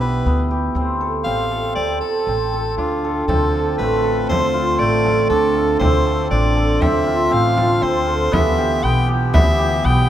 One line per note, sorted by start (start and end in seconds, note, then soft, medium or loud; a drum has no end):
0.00 0.21 B1 medium
0.00 0.26 B3 medium
0.00 1.46 D4 medium
0.00 3.49 E4 medium
0.00 0.50 G4 medium
0.00 0.90 A4 medium
0.00 0.47 B4 medium
0.26 0.72 D2 medium
0.26 0.82 B3 medium
0.51 3.65 G4 medium
0.75 1.22 D2 medium
0.75 1.25 C4 medium
1.01 1.51 A4 medium
1.24 1.73 A1 medium
1.24 1.75 C4 medium
1.24 1.72 F5 medium
1.51 2.01 A4 medium
1.75 2.00 D2 medium
1.75 2.28 C4 medium
1.75 1.99 D5 medium
2.00 2.73 A4 medium
2.00 2.53 A4 medium
2.27 2.74 A1 medium
2.27 3.28 C4 medium
2.54 3.04 A4 medium
2.77 3.24 D2 medium
2.77 5.30 D4 medium
2.77 3.25 F4 medium
3.04 3.54 A4 medium
3.28 3.75 D2 medium
3.28 8.29 D3 medium
3.28 8.29 C4 medium
3.28 4.29 C4 medium
3.28 8.29 F4 medium
3.28 3.75 A4 medium
3.28 frame drum soft
3.54 4.04 A4 medium
3.78 4.26 A1 medium
3.78 4.79 A3 medium
3.78 4.25 B4 medium
4.04 5.05 A4 medium
4.29 4.76 D2 medium
4.29 5.80 C4 medium
4.29 4.81 C5 medium
4.29 frame drum medium
4.54 7.06 F4 medium
4.79 5.26 A1 medium
4.79 9.23 A3 medium
4.79 5.29 D5 medium
5.05 5.55 A4 medium
5.05 frame drum soft
5.29 5.77 D2 medium
5.29 6.31 D4 medium
5.29 5.77 A4 medium
5.55 6.06 A4 medium
5.79 6.27 D2 medium
5.79 6.81 C4 medium
5.79 6.27 C5 medium
5.79 frame drum medium
6.07 6.56 A4 medium
6.31 6.77 A1 medium
6.31 10.04 D4 medium
6.31 6.83 D5 medium
6.57 8.06 A4 medium
6.81 7.28 D2 medium
6.81 7.31 C4 medium
6.81 7.35 E5 loud
6.81 frame drum medium
7.07 7.56 F4 medium
7.31 7.78 A1 medium
7.31 7.82 C4 medium
7.31 7.84 F5 medium
7.57 10.09 F4 medium
7.57 frame drum soft
7.82 8.29 D2 medium
7.82 8.38 C4 medium
7.82 8.35 C5 medium
8.07 10.09 A4 medium
8.32 8.79 D2 medium
8.32 10.09 E3 medium
8.32 8.83 B3 medium
8.32 10.09 B3 medium
8.32 10.09 G4 medium
8.32 8.85 E5 loud
8.32 frame drum medium
8.58 9.08 G4 medium
8.83 9.30 B1 medium
8.83 9.33 B3 medium
8.83 9.09 G5 medium
9.08 9.58 G4 medium
9.33 9.80 D2 medium
9.33 9.83 B3 medium
9.33 9.87 E5 loud
9.33 frame drum medium
9.58 10.08 G4 medium
9.84 10.09 B1 loud
9.84 10.09 B3 medium
9.84 10.09 G5 medium